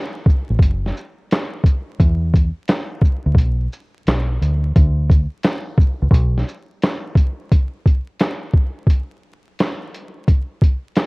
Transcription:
0.26 kick, shaker
0.50 A1
0.59 F#1, kick, closed hi-hat
0.86 snare
0.97 shaker
1.31 snare, clap, closed hi-hat
1.64 kick, closed hi-hat, shaker
2.00 E2, kick, closed hi-hat
2.34 kick, closed hi-hat, shaker
2.68 snare, clap, closed hi-hat
3.02 kick, shaker
3.26 D2
3.35 B1, kick, closed hi-hat
3.72 shaker
4.07 B1, snare, clap, closed hi-hat
4.41 D2, closed hi-hat, shaker
4.76 D2, kick, closed hi-hat
5.10 kick, closed hi-hat, shaker
5.43 snare, clap, closed hi-hat
5.78 kick, shaker
6.02 C#2
6.11 B1, kick, closed hi-hat
6.38 snare
6.48 shaker
6.82 snare, clap, closed hi-hat
7.16 kick, closed hi-hat, shaker
7.52 kick, closed hi-hat
7.86 kick, closed hi-hat
8.20 snare, clap, closed hi-hat
8.54 kick
8.87 kick, closed hi-hat
9.59 snare, clap, closed hi-hat
9.94 closed hi-hat
10.28 kick, closed hi-hat
10.62 kick, closed hi-hat
10.95 snare, clap, closed hi-hat

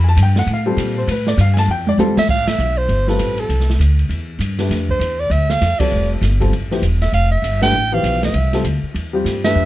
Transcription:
Already playing: F2
0.09 A5
0.17 G2, hi-hat pedal, ride
0.23 G5
0.36 F#5, snare
0.46 A2, ride
0.53 F5
0.66 G3 C4 F4 A4
0.77 A#2, hi-hat pedal, ride
0.98 C5
1.07 A2 B4, ride
1.27 D5, snare
1.38 G2 F5, hi-hat pedal, ride
1.54 G#5, snare, ride
1.58 A5
1.68 F2 G5
1.87 D5, high tom
1.97 E2 G3 C4 F4 A4, hi-hat pedal, high tom
2.16 E5, muted upright bass stroke, snare
2.29 A1 F5, kick, crash
2.48 E5, snare, ride
2.59 B1, hi-hat pedal
2.78 C5
2.89 G1, ride
3.08 G3 C4 F4 A4 B4, snare
3.19 A1, hi-hat pedal, ride
3.38 A4, ride
3.49 C2, ride
3.60 snare
3.70 snare
3.79 D2, hi-hat pedal, ride
3.99 ride
4.09 E2, ride
4.39 G2, hi-hat pedal, ride
4.59 A3 D4 G4 B4, snare, ride
4.69 F2, snare, ride
4.89 C5, kick
4.99 E2, hi-hat pedal, ride
5.20 D5
5.30 D2 E5, ride
5.50 F5, snare
5.61 F2, snare, hi-hat pedal, ride
5.79 G3 C4 F4 A4 D5, muted upright bass stroke, kick, ride
5.92 F1
6.21 G1, snare, hi-hat pedal, ride
6.40 G3 C4 F4 A4, kick, ride
6.53 A1, ride
6.71 F3 B3 E4 G4, snare
6.82 E1, hi-hat pedal, ride
7.02 E5, snare, ride
7.12 F1 F5, ride
7.31 E5
7.42 G1, hi-hat pedal, ride
7.62 A3 D4 G4 B4 G5, snare, ride
7.72 A1
7.92 E3 F3 B3 G4 F5
8.03 B1, hi-hat pedal, ride
8.23 E5, snare, ride
8.34 C2, ride
8.53 G3 C4 F4 A4, snare, ride
8.64 D2, hi-hat pedal, ride
8.83 muted upright bass stroke
8.94 E2, ride
9.13 G3 C4 F4 G4
9.24 G2, snare, hi-hat pedal, ride
9.44 A3 D4 G4 B4 E5, snare, ride
9.55 F2

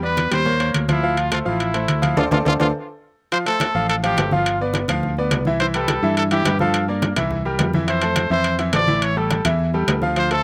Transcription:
Already playing: E2
0.02 B3 B4 D5, high conga
0.17 high conga, high timbale
0.31 D#2 G3 G4 C5 G5, high conga, low conga, high timbale
0.45 A#3 A#4 C#5, high conga, low conga
0.60 A#3 A#4 C#5, high conga, high timbale
0.74 D2, high conga, high timbale
0.88 F3 E4 F4 F5, high conga, high timbale
1.03 F3 F4 F5, high conga
1.17 F4, high conga, high timbale
1.31 A3 F4 A4 C5, high conga, high timbale
1.45 A1 F3 E4 F4 F5, high conga
1.60 high conga, high timbale
1.74 A3 A4 C5, high conga, high timbale
1.88 D2, high conga, high timbale
2.02 F3 F4 F5, high conga, high timbale
2.17 D2 F4 A4 C5 D5, high conga, high timbale
2.31 D2 F4 A4 C5 D5, high conga, high timbale
2.45 D2 F4 A4 C5 D5, high conga, high timbale
2.60 D2 F4 A4 C5 D5, high conga, high timbale
3.32 F3 F4 C5 F5, high conga, high timbale
3.46 A3 A4 C5, high conga, high timbale
3.60 high conga, high timbale, low timbale
3.75 A1 F3 F4 F5
3.89 A4, high conga, high timbale
4.03 F3 F4 G4 F5, high conga, high timbale
4.17 G1 A3 A4 C5, high conga, high timbale, low timbale
4.31 F3 F4 F5, high conga
4.46 high conga, high timbale
4.60 B3 B4 D5, high conga
4.74 high conga, high timbale, low timbale
4.88 D2 F3 F4 F5, low conga, high timbale
5.03 high conga, low conga
5.17 B3 B4 D5, high conga
5.31 C2, high conga, high timbale, low timbale
5.45 E3 E4 E5, high conga
5.60 E3 E4 C5 E5, high timbale
5.74 G3 G4 A4 B4, high conga, high timbale
5.88 high conga, high timbale, low timbale
6.03 G2 E3 E4 E5
6.16 A4, high conga, high timbale
6.31 E3 E4 G4 E5, high conga, high timbale
6.45 G2 G3 G4 B4, high conga, high timbale, low timbale
6.59 F3 F4 A4 F5, high conga
6.74 high conga, high timbale
6.88 A#3 A#4 D5, high conga
7.02 high conga, high timbale, low timbale
7.16 C2 E3 E4 E5, low conga, high timbale
7.31 high conga, low conga
7.45 G3 G4 A#4, high conga
7.59 F2, high conga, high timbale, low timbale
7.73 E3 E4 E5, high conga
7.88 E3 E4 C5 E5, high timbale
8.02 A3 A4 C5, high conga, high timbale
8.16 high conga, high timbale, low timbale
8.30 F2 E3 E4 C5 E5
8.44 high conga, high timbale
8.59 E3 E4 E5, high conga, high timbale
8.73 A1 A3 A4 C5 D5, high conga, high timbale, low timbale
8.87 E3 E4 E5, high conga
9.02 C#5, high conga, high timbale
9.16 G3 G4 A4, high conga
9.31 high conga, high timbale, low timbale
9.45 E2 E3 E4 E5, low conga, high timbale
9.59 high conga
9.73 G3 G4 A4, high conga
9.88 D2, high conga, high timbale, low timbale
10.02 F3 F4 F5, high conga
10.16 F3 F4 C5 F5, high timbale
10.31 A3 A4 C5, high conga, high timbale

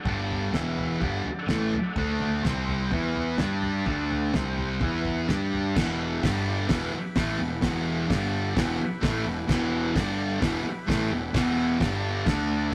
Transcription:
Already playing: D4 G4 D5
0.05 G1 G2 D3 G3, kick, floor tom
0.31 floor tom
0.51 E1 E2 B2 E3 E4 B4 E5, snare, floor tom
0.78 floor tom
0.99 G1 G2 D3 G3 D4 G4 D5, kick, floor tom
1.24 muted picked electric bass stroke, muted distorted electric guitar stroke, floor tom
1.47 A1 A2 E3 A3, snare, floor tom
1.70 muted picked electric bass stroke, muted distorted electric guitar stroke, floor tom
1.95 D2 D3 A3 D4 A4 D5, kick, floor tom
2.20 floor tom
2.43 C2 C3 G3 C4 G4 C5, snare, floor tom
2.68 floor tom
2.91 E2 E3 B3 E4 B4, kick, floor tom
3.15 floor tom
3.38 G2 G3 D4 G4 D5, snare, floor tom
3.62 floor tom
3.85 D2 D3 A3 D4 A4 D5, kick, floor tom
4.11 floor tom
4.33 C2 C3 G3 C4 G4 C5, snare, floor tom
4.58 floor tom
4.80 E2 E3 B3 E4 B4, kick, floor tom
5.05 kick, floor tom
5.26 G2 G3 D4 G4 D5, snare, floor tom
5.53 floor tom
5.75 E1 E2 B2 E3 E4, kick, snare, crash
5.79 G4 B4
6.23 G1 G2 D3 G3 D4 G4 D5, kick, snare, open hi-hat
6.66 E1 E2 B2 E4 G4 B4, kick, snare, open hi-hat
6.70 E3
6.93 muted distorted electric guitar stroke, muted picked electric bass stroke
7.16 A1 A2 E3 A3, kick, snare, open hi-hat
7.39 E1 E2 B2
7.62 E1 E2 B2 E3, kick, snare, open hi-hat
8.08 G1 G2 D3 G3 D4 G4 D5, kick, snare, open hi-hat
8.53 E1 E2 B2 E3 E4 G4 B4, kick, open hi-hat
8.57 snare
8.79 muted distorted electric guitar stroke, muted picked electric bass stroke
9.02 A1 A2 E3 A3, kick, snare, open hi-hat
9.25 E1 E2 B2
9.47 E1 E2 B2 E3, kick, snare, crash
9.95 G1 G2 D3 G3 D4 G4 D5, kick, snare, open hi-hat
10.41 E1 E2 B2 E3 E4 G4 B4, kick, snare, open hi-hat
10.64 muted distorted electric guitar stroke, muted picked electric bass stroke
10.87 A1 A2 E3 A3, kick, snare, open hi-hat
11.11 E1 E2 B2
11.34 E1 E2 B2 E3, kick, snare, open hi-hat
11.79 G1 G2 D3 G3 D4 G4 D5, kick, snare, open hi-hat
12.26 D2 D3 A3 D4 A4 D5, kick, snare, open hi-hat
12.71 E2 E4 G4

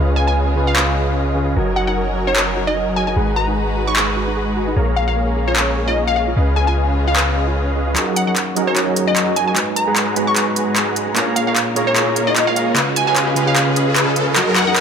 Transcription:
Already playing: C#2 C#3 G#3 B3 C#4 F4 G#4 B4 D#5 F5
0.00 B4
0.16 G#5
0.28 G#5
0.55 C#3 C#4 F4 B4
0.67 F5
0.76 clap
1.35 C#3 C#4 F4 B4
1.56 F#1 F#3 C#4 D#4 F#4 A#4 D#5 G#5
1.76 F#4 F#5
1.87 D#4 F#5
1.96 A#4
2.16 F#4
2.27 D#4 C#5
2.36 A#4, clap
2.56 F#4
2.67 D#4 D#5
2.76 A#4
2.96 F#4 G#5
3.07 D#4 G#5
3.16 G#1 G#3 D#4 F#4 G#4 B4 F#5 A#5
3.36 F#4 A#5
3.47 D#4
3.56 G#4
3.76 F#4
3.87 D#4 C#6
3.96 G#4, clap
4.16 F#4
4.27 D#4
4.36 G#4
4.56 F#4
4.68 D#4
4.76 A#1 A#3 C#4 G#4 A#4 C#5 F5 A#5
4.96 G#4 F5
5.08 F4 F5
5.16 A#4
5.36 G#4
5.48 F4 C#5
5.56 A#4, clap
5.77 G#4
5.88 F4 D#5
5.97 A#4
6.07 F5
6.16 G#4 F5
6.28 F4
6.36 C#2 C#3 B3 C#4 F4 G#4 B4 D#5 F5
6.56 G#4 G#5
6.67 F4 G#5
6.76 B4
6.96 G#4
7.07 F4 F5
7.16 B4, clap
7.36 G#4
7.47 F4
7.56 B4
7.76 G#4
7.87 F4
7.94 F#2 D#3 F#3 A#3 C#4 D#4 F#4 G#4 D#5 A#5, clap, closed hi-hat, riser
7.98 A#4
8.16 F#5, closed hi-hat
8.27 F#3 F#4 G#4 D#5 F#5 A#5
8.36 clap, closed hi-hat
8.55 F#3 C#4 D#4 F#4 G#4 A#4 D#5 A#5, closed hi-hat
8.67 C#5
8.76 clap, closed hi-hat
8.96 closed hi-hat
9.07 D#5
9.16 clap, closed hi-hat
9.36 G#5, closed hi-hat
9.48 G#5
9.54 G#2 F#3 G#3 B3 D#4 F#4 G#4 B4, clap, closed hi-hat
9.76 A#5, closed hi-hat
9.87 G#3 G#4 B4 F#5 A#5
9.96 clap, closed hi-hat
10.15 G#3 D#4 F#4 G#4 B4 F#5 A#5, closed hi-hat
10.27 C#6
10.36 clap, closed hi-hat
10.56 closed hi-hat
10.76 clap, closed hi-hat
10.96 closed hi-hat
11.14 A#2 G#3 A#3 C#4 F4 G#4 A#4 C#5 F5 A#5, clap, closed hi-hat
11.18 C#5
11.36 F5, closed hi-hat
11.47 A#3 G#4 C#5 F5 A#5
11.56 clap, closed hi-hat
11.75 A#3 F4 G#4 C#5 F5 A#5, closed hi-hat
11.87 C#5
11.96 clap, closed hi-hat
12.16 closed hi-hat
12.27 D#5
12.36 clap, closed hi-hat
12.47 F5
12.56 F5, closed hi-hat
12.74 C#3 C#4 F4 B4, clap, closed hi-hat
12.78 B4
12.96 G#5, closed hi-hat
13.07 C#4 G#4 B4 D#5 F5 G#5
13.16 clap, closed hi-hat
13.35 C#3 C#4 F4 G#4 B4 D#5 F5, closed hi-hat
13.47 F5
13.56 clap, closed hi-hat
13.76 closed hi-hat
13.96 clap, closed hi-hat
14.16 closed hi-hat
14.36 F#2 F#3 D#4 F#4 G#4 A#4 D#5 A#5, clap, closed hi-hat
14.56 F#4 F#5, clap, closed hi-hat
14.67 F#3 D#4 F#4 G#4 D#5 F#5 A#5
14.76 A#4, clap, closed hi-hat

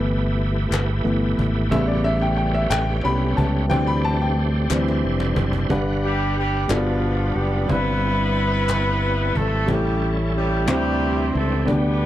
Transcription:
Already playing: G1 E3 A3 B3 E4 G4 B4 E5
0.07 cajon slap
0.40 cajon slap
0.71 G1, cajon slap, clap
1.04 G1 E3 A3 B3, cajon slap
1.38 G#1, cajon bass
1.69 A1 C#3 G3 A3 B3 C#4 G4 B4 E5, cajon bass
1.88 D5
2.04 E5
2.22 G5
2.37 G5, cajon slap
2.54 E5
2.70 A1 G5, cajon slap, clap
3.03 C2 G3 B3 C#4 B5
3.37 C#2 A5, cajon bass
3.68 D2 E3 G3 A3 C4 D4 G4 C5 G5, cajon bass
3.87 B5
4.05 A5
4.22 G5
4.37 cajon slap
4.70 D2 E3 G3 C4 D4 E4 C5, cajon slap, clap
4.88 cajon slap
5.04 F1, cajon slap
5.20 cajon slap
5.36 F#1, cajon bass
5.53 cajon bass
5.69 G1 G2 G3 D4 B4 F#5, cajon bass
6.03 G3 G4, cajon slap
6.35 G3 G4, cajon slap
6.67 G1 B2 G3 D4 F4 B4, cajon slap, clap
6.71 F3 B3 D4 F4 A4
6.78 B4
7.03 cajon slap
7.36 F#1 G3 G4, cajon slap
7.66 G1 G2 G3 C4 E4 B4, cajon bass
7.70 G3 B3 C4 D4 E4 B4
7.78 E4
8.02 cajon slap
8.69 cajon slap, clap
9.36 G#1 A3 A4, cajon bass
9.65 A1 A2 G3 C4 C#4 E4 G4, cajon bass
9.70 G3 C#4 E4 G4 A4
9.74 C#4
10.02 cajon slap
10.34 G3 G4, cajon slap
10.66 D2 C3 E3 G3 C4 D4 E4 F#4 C5, cajon slap, clap
10.70 G3 G4
11.34 C#2 A3 A4, cajon slap
11.66 D2 D3 G3 B3 D4 G4 D5, cajon bass
11.70 B3 D4 B4
12.01 cajon slap

